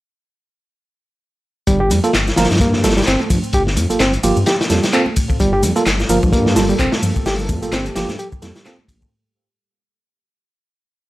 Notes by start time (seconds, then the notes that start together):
1.67 G1 G3, kick, closed hi-hat, shaker
1.80 G4
1.90 F2 G3, closed hi-hat, ride, high conga, low conga, shaker
2.04 A#3 F4 A4, closed hi-hat, shaker
2.13 G1, snare, clap, closed hi-hat, shaker
2.27 snare, shaker
2.36 G1 F3 A#3 F4 A#4, snare, closed hi-hat, ride, shaker
2.44 snare, closed hi-hat
2.50 G2, snare, closed hi-hat, high conga, low conga, shaker
2.55 snare, closed hi-hat
2.60 A#3, kick, closed hi-hat, shaker
2.73 snare, low conga
2.84 G1 G3 A#3 F4 A4, snare, closed hi-hat, ride, shaker
2.90 snare, closed hi-hat
2.97 G3, snare, closed hi-hat, shaker
3.02 snare, closed hi-hat
3.07 G1 C4, snare, clap, closed hi-hat, shaker
3.20 closed hi-hat, high conga
3.30 G2 F3, kick, closed hi-hat, ride, shaker
3.43 shaker
3.53 G1 G4, kick, closed hi-hat, shaker
3.67 snare
3.77 F2, closed hi-hat, ride, high conga, low conga, shaker
3.90 G1 A#3 F4 A4, closed hi-hat, shaker
3.99 G1 C4, snare, clap, closed hi-hat, shaker
4.13 closed hi-hat, shaker
4.23 G1 F3 A#3 F4 G4, closed hi-hat, ride, shaker
4.37 G2, high conga, low conga, shaker
4.46 G4, snare, closed hi-hat, shaker
4.61 snare, closed hi-hat
4.70 F2 G3 A#3 F4 A4, snare, closed hi-hat, ride, shaker
4.83 snare, closed hi-hat, shaker
4.93 A#3 C4 F4 A4, clap, shaker
5.06 high conga
5.16 kick, closed hi-hat, ride, shaker
5.30 kick, shaker
5.40 G1 G3 A#3 F4 A4, kick, closed hi-hat, shaker
5.53 G4
5.62 F2 G3, closed hi-hat, ride, high conga, low conga, shaker
5.76 A#3 F4 A4, closed hi-hat, shaker
5.86 G1, snare, clap, closed hi-hat, shaker
6.00 snare, shaker
6.09 G1 F3 A#3 F4 A#4, closed hi-hat, ride, shaker
6.23 G2, kick, high conga, low conga, shaker
6.33 A#3, kick, closed hi-hat, shaker
6.46 snare, low conga
6.56 G1 G3 A#3 F4 A4, snare, open hi-hat, ride, shaker
6.69 G3, shaker
6.79 G1 C4, kick, clap, closed hi-hat, shaker
6.92 snare, open hi-hat, high conga
7.03 G2 F3, ride, shaker
7.16 kick, closed hi-hat, shaker
7.26 G1 G4, snare, open hi-hat, shaker
7.39 shaker
7.49 F2, kick, closed hi-hat, ride, high conga, low conga, shaker
7.62 G1 A#3 F4 A4, closed hi-hat, shaker
7.72 G1 C4, snare, clap, closed hi-hat, shaker
7.86 closed hi-hat, shaker
7.96 G1 F3 A#3 F4 G4, snare, closed hi-hat, ride, shaker
8.09 G2, snare, high conga, low conga, shaker
8.19 G4, closed hi-hat, shaker
8.32 kick, shaker
8.42 F2 G3 A#3 F4 A4, snare, closed hi-hat, ride, shaker
8.55 snare, closed hi-hat, shaker
8.65 A#3 C4 F4 A4, snare, clap, closed hi-hat, shaker
8.79 high conga
8.88 A#1, kick, closed hi-hat, ride, shaker
9.02 kick, shaker